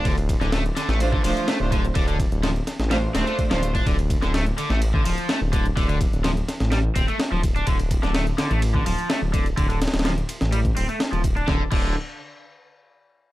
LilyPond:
<<
  \new Staff \with { instrumentName = "String section" } { \time 4/4 \key d \minor \tempo 4 = 126 r2 <a d' f' c''>16 r16 <a d' f' c''>8 r16 <a d' f' c''>16 r8 | r2 <a d' f' c''>16 r16 <a d' f' c''>8 r16 <a d' f' c''>16 r8 | r1 | r1 |
r1 | r1 | r1 | }
  \new Staff \with { instrumentName = "Overdriven electric guitar" } { \clef bass \time 4/4 \key d \minor d16 r8 d16 a16 r16 d16 a16 r16 d16 f8 a16 r16 d16 r16 | d16 d16 r8 f16 r8. g16 r16 c'16 a16 r16 f16 r16 d'16 | d16 r8 d16 a16 r16 d16 a16 r16 d16 f8 a16 r16 d16 r16 | d16 d16 r8 f16 r8. g16 r16 c'16 a16 r16 f16 r16 d'16 |
d16 r8 d16 a16 r16 d16 a16 r16 d16 f8 a16 r16 d16 r16 | d16 d16 r8 f16 r8. g16 r16 c'16 a16 r16 f16 r16 d'16 | d16 r16 d8 r2. | }
  \new Staff \with { instrumentName = "Detuned saw bass" } { \clef bass \time 4/4 \key d \minor d,,8 r16 d,,8 r8 a,,8 r16 d,,16 r8 d,,8 r16 | d,,8 r16 d,,8 r8 a,,8 r16 d,,16 r8 d,,8 r16 | d,,8 r16 d,,8 r8 a,,8 r16 d,,16 r8 d,,8 r16 | d,,8 r16 d,,8 r8 a,,8 r16 d,,16 r8 d,,8 r16 |
d,,8 r16 d,,8 r8 a,,8 r16 d,,16 r8 d,,8 r16 | d,,8 r16 d,,8 r8 a,,8 r16 d,,16 r8 d,,8 r16 | d,,16 r16 d,,8 r2. | }
  \new DrumStaff \with { instrumentName = "Drums" } \drummode { \time 4/4 <hh bd cymr>16 <hh cymr>16 <hh bd cymr>16 <hh sn>16 <hh cymr sn>16 hh16 <hh cymr sn>16 <hh sn>16 <hh cymr>16 bd16 <hh hho>16 hh16 <hh cymr sn>8 <hh bd cymr>16 hh16 | <hh bd cymr>16 <hh cymr>16 <hh bd cymr>16 hh16 <hh cymr sn>16 hh16 <hh cymr sn>16 <hh sn>16 <hh cymr sn>8 <hh cymr sn>16 hh16 <hh bd cymr>16 <cymr sn>16 hh16 <hh bd cymr>16 | <hh bd cymr>16 <hh cymr>16 <hh bd cymr>16 <hh sn>16 <hh cymr sn>16 hh16 <hh cymr>16 <hh sn>16 <hh cymr>16 bd16 <hh hho>16 hh16 <hh cymr sn>8 <hh bd cymr>16 hh16 | <hh bd cymr>16 <hh cymr>16 <hh bd cymr>16 hh16 <hh cymr sn>16 hh16 <hh cymr sn>16 <hh sn>16 <hh cymr sn>8 <hh bd cymr>16 hh16 <hh cymr sn>8 <hh bd cymr>16 hh16 |
<hh bd cymr>16 <hh cymr>16 <hh bd cymr>16 <hh sn>16 <hh cymr sn>16 hh16 <hh cymr sn>16 hh16 <hh cymr>16 bd16 <hh hho>16 hh16 <hh cymr sn>8 <hh bd cymr>16 hh16 | <hh bd cymr>16 <hh cymr>16 <hh cymr sn>32 <cymr sn>32 <hh cymr sn>32 <cymr sn>32 <hh cymr sn>16 hh16 <hh cymr>16 <hh sn>16 <hh cymr>16 <hh bd>16 <hh hho>16 hh16 <hh cymr sn>16 hh16 <hh bd cymr>16 hh16 | <bd sn>8 <cymc bd>8 r4 r4 r4 | }
>>